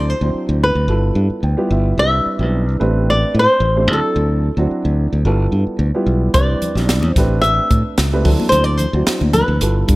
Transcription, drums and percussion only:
6.34 kick, closed hi-hat, low conga
6.62 closed hi-hat, low conga
6.77 snare
6.89 snare, closed hi-hat
7.03 high conga
7.16 kick, snare, closed hi-hat, low conga
7.43 closed hi-hat
7.71 kick, closed hi-hat
7.98 snare, closed hi-hat
8.25 kick, open hi-hat, low conga
8.40 high conga
8.52 closed hi-hat, low conga
8.79 closed hi-hat, low conga
9.07 snare, closed hi-hat
9.21 high conga
9.33 closed hi-hat, low conga
9.61 closed hi-hat
9.88 kick, closed hi-hat

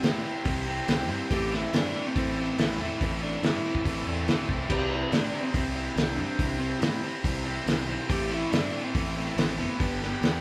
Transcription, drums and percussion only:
0.03 snare, open hi-hat
0.45 kick, open hi-hat
0.88 snare, open hi-hat
1.31 kick, open hi-hat
1.54 snare
1.73 snare, open hi-hat
2.16 kick, open hi-hat
2.58 snare, open hi-hat
2.70 snare
3.01 kick, open hi-hat
3.43 snare, open hi-hat
3.75 kick
3.85 kick, open hi-hat
4.28 snare, open hi-hat
4.49 kick
4.70 kick, crash
5.12 snare, open hi-hat
5.54 kick, open hi-hat
5.97 snare, open hi-hat
6.39 kick, open hi-hat
6.82 snare, open hi-hat
7.24 kick, open hi-hat
7.67 snare, open hi-hat
8.10 kick, open hi-hat
8.53 snare, open hi-hat
8.95 kick, open hi-hat
9.38 snare, open hi-hat
9.80 kick, open hi-hat
10.03 snare
10.23 snare, open hi-hat

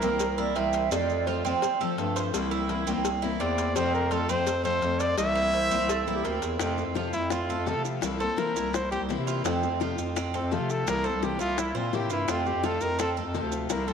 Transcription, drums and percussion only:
0.02 maracas
0.20 cowbell, maracas
0.38 maracas
0.55 cowbell, maracas
0.73 cowbell, maracas
0.92 cowbell, maracas
1.10 maracas
1.27 cowbell, maracas
1.46 maracas
1.62 cowbell, maracas
1.81 maracas
1.98 cowbell, maracas
2.16 cowbell, maracas
2.34 cowbell, maracas
2.51 maracas
2.69 cowbell, maracas
2.87 maracas
3.05 cowbell, maracas
3.23 maracas
3.40 cowbell, maracas
3.58 cowbell, maracas
3.76 cowbell, maracas
3.94 maracas
4.11 cowbell, maracas
4.29 maracas
4.47 cowbell, maracas
4.65 maracas
4.82 cowbell, maracas
5.00 cowbell, maracas
5.18 cowbell, maracas
5.37 maracas
5.53 cowbell, maracas
5.71 maracas
5.89 cowbell, maracas
6.07 maracas
6.25 cowbell, maracas
6.42 cowbell, maracas
6.59 high bongo, maracas
6.78 high bongo, maracas
6.95 high bongo, maracas
7.13 high bongo, maracas
7.30 high bongo, maracas
7.50 maracas
7.67 high bongo, low bongo, maracas
7.85 high bongo, maracas
8.02 high bongo, maracas
8.20 high bongo, maracas
8.38 high bongo, maracas
8.56 high bongo, maracas
8.74 high bongo, maracas
8.93 maracas
9.10 high bongo, low bongo, maracas
9.28 high bongo, maracas
9.45 high bongo, maracas
9.63 high bongo, maracas
9.81 high bongo, maracas
9.98 high bongo, maracas
10.16 high bongo, maracas
10.35 maracas
10.52 high bongo, low bongo, maracas
10.70 high bongo, maracas
10.87 high bongo, maracas
11.05 high bongo, maracas
11.23 high bongo, maracas
11.40 high bongo, maracas
11.58 high bongo, maracas
11.75 maracas
11.93 high bongo, low bongo, maracas
12.10 high bongo, maracas
12.28 high bongo, maracas
12.46 high bongo, maracas
12.64 high bongo, maracas
12.81 high bongo, maracas
12.99 high bongo, maracas
13.17 maracas
13.34 high bongo, low bongo, maracas
13.52 high bongo, maracas
13.70 high bongo, maracas
13.87 high bongo, maracas

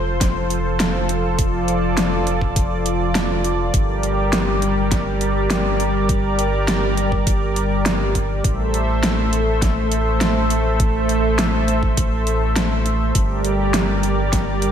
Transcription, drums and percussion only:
0.21 kick, snare, closed hi-hat
0.50 closed hi-hat
0.80 snare, closed hi-hat
1.09 closed hi-hat
1.39 kick, closed hi-hat
1.68 closed hi-hat
1.97 snare, closed hi-hat
2.27 closed hi-hat
2.41 kick
2.56 kick, closed hi-hat
2.86 closed hi-hat
3.15 snare, closed hi-hat
3.44 closed hi-hat
3.74 kick, closed hi-hat
4.03 closed hi-hat
4.33 snare, closed hi-hat
4.62 closed hi-hat
4.91 kick, snare, closed hi-hat
5.21 closed hi-hat
5.50 snare, closed hi-hat
5.80 closed hi-hat
6.09 kick, closed hi-hat
6.39 closed hi-hat
6.68 snare, closed hi-hat
6.97 closed hi-hat
7.12 kick
7.27 kick, closed hi-hat
7.56 closed hi-hat
7.86 snare, closed hi-hat
8.15 kick, closed hi-hat
8.44 kick, closed hi-hat
8.74 closed hi-hat
9.03 snare, closed hi-hat
9.33 closed hi-hat
9.62 kick, snare, closed hi-hat
9.92 closed hi-hat
10.21 snare, closed hi-hat
10.50 closed hi-hat
10.80 kick, closed hi-hat
11.09 closed hi-hat
11.39 snare, closed hi-hat
11.68 closed hi-hat
11.83 kick
11.97 kick, closed hi-hat
12.27 closed hi-hat
12.56 snare, closed hi-hat
12.86 closed hi-hat
13.15 kick, closed hi-hat
13.45 closed hi-hat
13.74 snare, closed hi-hat
14.03 closed hi-hat
14.33 kick, snare, closed hi-hat
14.62 closed hi-hat

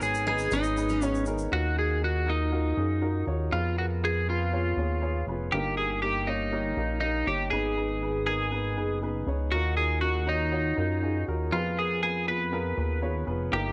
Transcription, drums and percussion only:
0.01 shaker
0.14 shaker
0.38 shaker
0.51 shaker
0.63 shaker
0.77 shaker
0.89 shaker
1.02 shaker
1.15 shaker
1.26 shaker
1.38 shaker

